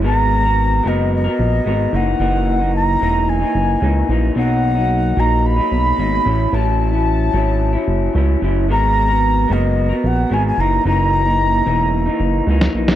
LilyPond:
<<
  \new Staff \with { instrumentName = "Flute" } { \time 4/4 \key fis \mixolydian \tempo 4 = 111 ais''4. dis''8 dis''4. fis''8~ | fis''4 ais''4 gis''4. r8 | fis''4. ais''8 b''2 | a''2. r4 |
ais''4. dis''4 fis''8 gis''16 gis''16 ais''8 | ais''2. r4 | }
  \new Staff \with { instrumentName = "Clean electric guitar" } { \time 4/4 \key fis \mixolydian <gis b fis' ais'>8. <b fis' ais'>8. <gis b fis' ais'>8. <b fis' ais'>8. <gis b fis' ais'>8 <fis, e ais dis'>8 | <fis, e ais dis'>8. <e ais dis'>8. <fis, e ais dis'>8. <e ais dis'>8. <fis, e ais dis'>8 <fis, e ais dis'>8 | <b, fis ais dis'>8. <fis ais dis'>8. <fis ais dis'>8. <fis ais dis'>8. <b, fis ais dis'>8 <a, fis cis' e'>8 | <a, fis cis' e'>8. <fis cis' e'>8. <fis cis' e'>8. <fis cis' e'>8. <a, fis cis' e'>8 <a, fis cis' e'>8 |
<gis b fis' ais'>8. <b fis' ais'>8. <gis b fis' ais'>8. <b fis' ais'>8. <gis b fis' ais'>8 <fis, e ais dis'>8 | <fis, e ais dis'>8. <e ais dis'>8. <fis, e ais dis'>8. <e ais dis'>8. <fis, e ais dis'>8 <fis, e ais dis'>8 | }
  \new Staff \with { instrumentName = "Analog synth bass" } { \clef bass \time 4/4 \key fis \mixolydian gis,,4. fis,,4 ais,,8 gis,,8 fis,,8 | fis,,4. e,,4 fis,,8 cis,8 ais,,8 | b,,4. ais,,4 b,,8 gis,,8 a,,8 | a,,4. gis,,4 fis,,8 cis,8 fis,,8 |
gis,,4. fis,,4 ais,,8 gis,,8 fis,,8 | fis,,4. e,,4 fis,,8 cis,8 ais,,8 | }
  \new DrumStaff \with { instrumentName = "Drums" } \drummode { \time 4/4 r4 r4 r4 r4 | r4 r4 r4 r4 | r4 r4 r4 r4 | r4 r4 r4 r4 |
r4 r4 r4 r4 | r4 r4 r4 r16 sn8 sn16 | }
>>